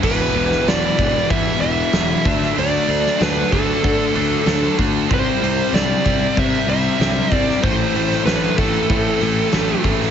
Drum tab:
CC |x---------------|----------------|----------------|----------------|
HH |--o-o-o-o-o-o-o-|o-o-o-o-o-o-o-o-|o-o-o-o-o-o-o-o-|o-o-o-o-o-o-o-o-|
SD |---oo-------o--o|---oo-------o---|----o-------o--o|---oo-------o--o|
BD |o-----o-o-----o-|------o-o-----o-|o-----o-o-----o-|o-----o-o-----o-|